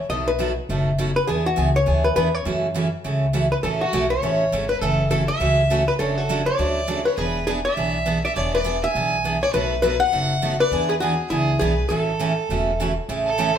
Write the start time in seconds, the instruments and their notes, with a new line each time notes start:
0.09 upright bass B1, steel-string acoustic guitar B2 F#3 A3 D#4 F#4, hollow-body jazz guitar D#5
0.28 hollow-body jazz guitar B4
0.39 steel-string acoustic guitar B2 F#3 A3 D#4 F#4
0.69 upright bass F#1, steel-string acoustic guitar B2 F#3 A3 D#4 F#4
0.98 steel-string acoustic guitar B2 F#3 A3 D#4 F#4
1.16 hollow-body jazz guitar B4
1.27 upright bass E2, steel-string acoustic guitar E3 B3 D4 G#4, hollow-body jazz guitar G#4
1.46 hollow-body jazz guitar F#4
1.56 upright bass C#2, steel-string acoustic guitar E3 B3 D4 G#4
1.76 hollow-body jazz guitar C#5
1.86 upright bass D2, steel-string acoustic guitar E3 B3 D4 G#4
2.04 hollow-body jazz guitar B4
2.16 upright bass E2, steel-string acoustic guitar E3 B3 D4 G#4, hollow-body jazz guitar B4
2.35 hollow-body jazz guitar C#5
2.45 upright bass F#2, steel-string acoustic guitar C#3 E3 A3 C#4 F#4
2.74 steel-string acoustic guitar C#3 E3 A3 C#4 F#4
3.04 upright bass C#2, steel-string acoustic guitar C#3 E3 A3 C#4 F#4
3.33 steel-string acoustic guitar C#3 E3 A3 C#4 F#4
3.52 hollow-body jazz guitar B4, fiddle B4
3.63 upright bass A1, steel-string acoustic guitar C#3 E3 A3 C#4 F#4, hollow-body jazz guitar A4, fiddle A4
3.81 hollow-body jazz guitar F#4, fiddle F#4
3.93 upright bass B1, steel-string acoustic guitar C#3 E3 A3 C#4 F#4
4.10 hollow-body jazz guitar C#5, fiddle C#5
4.22 upright bass A1, steel-string acoustic guitar C#3 E3 A3 C#4 F#4
4.52 upright bass G#1, steel-string acoustic guitar C#3 E3 A3 C#4 F#4
4.69 hollow-body jazz guitar B4, fiddle B4
4.80 upright bass F#1, steel-string acoustic guitar C#3 E3 A3 C#4 F#4, fiddle A4, hollow-body jazz guitar A4
5.09 steel-string acoustic guitar C#3 E3 A3 C#4 F#4, fiddle A4, hollow-body jazz guitar A4
5.28 fiddle E5, hollow-body jazz guitar E5
5.40 upright bass C#2, steel-string acoustic guitar C#3 E3 A3 C#4 F#4
5.70 steel-string acoustic guitar C#3 E3 A3 C#4 F#4
5.88 fiddle B4, hollow-body jazz guitar B4
5.99 upright bass F#1, steel-string acoustic guitar C#3 F#3 A3 D4 F#4, hollow-body jazz guitar A4, fiddle C#5
6.17 hollow-body jazz guitar F#4, fiddle A4
6.29 steel-string acoustic guitar C#3 F#3 A3 D4 F#4
6.46 hollow-body jazz guitar C#5, fiddle D5
6.59 upright bass D2, steel-string acoustic guitar C#3 F#3 A3 D4 F#4
6.87 steel-string acoustic guitar C#3 F#3 A3 D4 F#4
7.05 hollow-body jazz guitar B4, fiddle C#5
7.17 upright bass E1, steel-string acoustic guitar E3 B3 D4 G#4, hollow-body jazz guitar G#4, fiddle B4
7.47 steel-string acoustic guitar E3 B3 D4 G#4, hollow-body jazz guitar G#4, fiddle B4
7.65 hollow-body jazz guitar D5, fiddle E5
7.77 upright bass B1, steel-string acoustic guitar E3 B3 D4 G#4
8.06 steel-string acoustic guitar E3 B3 D4 G#4
8.24 hollow-body jazz guitar D5, fiddle E5
8.35 upright bass E1, steel-string acoustic guitar E3 B3 D4 G#4, hollow-body jazz guitar C#5, fiddle D5
8.54 hollow-body jazz guitar B4, fiddle D5
8.64 steel-string acoustic guitar E3 B3 D4 G#4
8.84 hollow-body jazz guitar E5, fiddle G#5
8.95 upright bass B1, steel-string acoustic guitar E3 B3 D4 G#4
9.24 steel-string acoustic guitar E3 B3 D4 G#4
9.43 hollow-body jazz guitar C#5, fiddle D5
9.53 upright bass B1, steel-string acoustic guitar B2 F#3 A3 D#4 F#4, fiddle B4, hollow-body jazz guitar B4
9.82 steel-string acoustic guitar B2 F#3 A3 D#4 F#4, hollow-body jazz guitar B4, fiddle B4
10.00 hollow-body jazz guitar F#5, fiddle F#5
10.12 upright bass F#1, steel-string acoustic guitar B2 F#3 A3 D#4 F#4
10.42 steel-string acoustic guitar B2 F#3 A3 D#4 F#4
10.60 hollow-body jazz guitar B4, fiddle D5
10.71 upright bass E2, steel-string acoustic guitar E3 B3 D4 G#4
10.89 hollow-body jazz guitar G#4, fiddle B4
11.00 steel-string acoustic guitar E3 B3 D4 G#4, hollow-body jazz guitar F#4, fiddle G#4
11.30 upright bass C#2, steel-string acoustic guitar E3 B3 D4 G#4, hollow-body jazz guitar E4, fiddle G#4
11.59 upright bass B1, steel-string acoustic guitar E3 B3 D4 G#4, hollow-body jazz guitar G#4, fiddle B4
11.89 upright bass A1, steel-string acoustic guitar C#3 E3 A3 C#4 F#4, hollow-body jazz guitar A4, fiddle A4
12.19 steel-string acoustic guitar C#3 E3 A3 C#4 F#4
12.49 upright bass E1, steel-string acoustic guitar C#3 E3 A3 C#4 F#4
12.80 steel-string acoustic guitar C#3 E3 A3 C#4 F#4
13.09 upright bass A1, steel-string acoustic guitar C#3 E3 A3 C#4 G#4
13.26 fiddle A4
13.38 steel-string acoustic guitar C#3 E3 A3 C#4 G#4